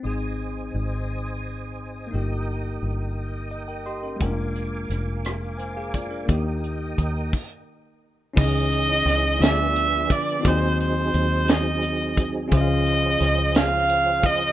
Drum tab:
CC |------|------|------|---x--|
HH |------|------|xxxxxx|xxx---|
SD |------|------|--rr--|------|
BD |------|------|o----o|o-oo--|

CC |x-----|------|------|
HH |-xxxxx|xxxxxx|xxxxxx|
SD |--oo--|---o--|--oo--|
BD |o----o|o----o|o----o|